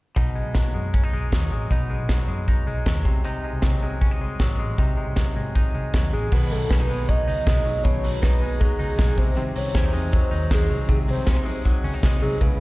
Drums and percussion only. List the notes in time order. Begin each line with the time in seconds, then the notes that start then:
0.16 kick, closed hi-hat
0.55 kick, snare, closed hi-hat
0.94 kick, closed hi-hat
1.32 kick, snare, closed hi-hat
1.71 kick, closed hi-hat
2.09 kick, snare, closed hi-hat
2.48 kick, closed hi-hat
2.86 kick, snare, closed hi-hat
3.05 kick
3.24 closed hi-hat
3.62 kick, snare, closed hi-hat
4.01 kick, closed hi-hat
4.39 kick, snare, closed hi-hat
4.78 kick, closed hi-hat
5.16 kick, snare, closed hi-hat
5.56 kick, closed hi-hat
5.94 kick, snare, closed hi-hat
6.32 kick, crash
6.51 open hi-hat
6.70 kick, snare
6.90 open hi-hat
7.09 kick, closed hi-hat
7.28 open hi-hat
7.47 kick, snare, closed hi-hat
7.66 open hi-hat
7.85 kick, closed hi-hat
8.04 open hi-hat
8.23 kick, snare
8.42 open hi-hat
8.61 kick, closed hi-hat
8.80 open hi-hat
8.99 kick, snare, closed hi-hat
9.18 kick, open hi-hat
9.37 closed hi-hat
9.56 open hi-hat
9.75 kick, snare, closed hi-hat
9.94 open hi-hat
10.13 kick, closed hi-hat
10.32 open hi-hat
10.51 kick, snare, closed hi-hat
10.70 open hi-hat
10.89 kick, closed hi-hat
11.08 open hi-hat
11.27 kick, snare, closed hi-hat
11.46 open hi-hat
11.65 kick, closed hi-hat
11.84 open hi-hat
12.03 kick, snare, closed hi-hat
12.22 open hi-hat
12.41 kick, closed hi-hat